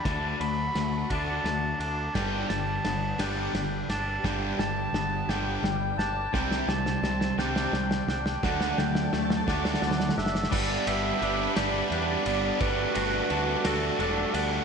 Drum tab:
CC |------------------------|x-----------------------|------------------------|------------------------|
RD |x---x---x---x---x---x---|----x---x---x---x---x---|------------------------|------------------------|
SD |o-------o-------o-------|o---o---o---o---o---o---|o---o---o---o---o---o---|o-o-o-o-o-o-o-o-o-o-o-o-|
BD |o-----------o-----------|o-----------------------|o-----------------------|o-----------------------|

CC |------------------------|x-----------------------|------------------------|
RD |------------------------|----x---x---x---x---x---|x---x---x---x---x---x---|
SD |o-o-o-o-o-o-o-oooooooooo|------------o-----------|------------o-----------|
BD |o-----------o-----------|o-----------------------|o-----------------------|